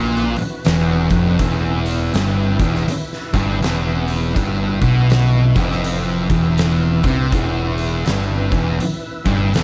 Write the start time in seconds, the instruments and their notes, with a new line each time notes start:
Already playing: picked electric bass A#1, distorted electric guitar A#2, tonewheel organ E3 F#4 B4
0.16 snare
0.36 muted distorted electric guitar stroke, muted picked electric bass stroke, closed hi-hat
0.65 picked electric bass E1, distorted electric guitar E2, snare, closed hi-hat
1.10 picked electric bass F1, distorted electric guitar F2, kick, closed hi-hat
1.38 picked electric bass E1, distorted electric guitar E2, tonewheel organ E4, kick, closed hi-hat
1.86 closed hi-hat
2.13 picked electric bass G1, distorted electric guitar G2, snare, closed hi-hat
2.60 picked electric bass E1, distorted electric guitar E2, kick, closed hi-hat
2.76 snare
2.87 muted picked electric bass stroke, muted distorted electric guitar stroke, closed hi-hat
3.13 snare
3.34 picked electric bass G1, distorted electric guitar G2, kick, closed hi-hat
3.62 picked electric bass E1, distorted electric guitar E2, snare, closed hi-hat
4.08 closed hi-hat
4.36 picked electric bass G1, distorted electric guitar G2, kick, closed hi-hat
4.82 picked electric bass B1, distorted electric guitar B2, kick, closed hi-hat
5.10 snare, closed hi-hat
5.56 picked electric bass F1, distorted electric guitar F2, kick, closed hi-hat
5.71 snare
5.84 closed hi-hat
6.30 picked electric bass E1, distorted electric guitar E2, kick, closed hi-hat
6.58 snare, closed hi-hat
7.03 picked electric bass C2, distorted electric guitar C3, kick, closed hi-hat
7.32 picked electric bass E1, distorted electric guitar E2, kick, closed hi-hat
7.78 closed hi-hat
8.06 picked electric bass G1, distorted electric guitar G2, snare, closed hi-hat
8.51 picked electric bass E1, distorted electric guitar E2, kick, closed hi-hat
8.80 muted distorted electric guitar stroke, muted picked electric bass stroke, closed hi-hat
9.25 picked electric bass G1, distorted electric guitar G2, kick, closed hi-hat
9.54 picked electric bass E1, distorted electric guitar E2, snare, closed hi-hat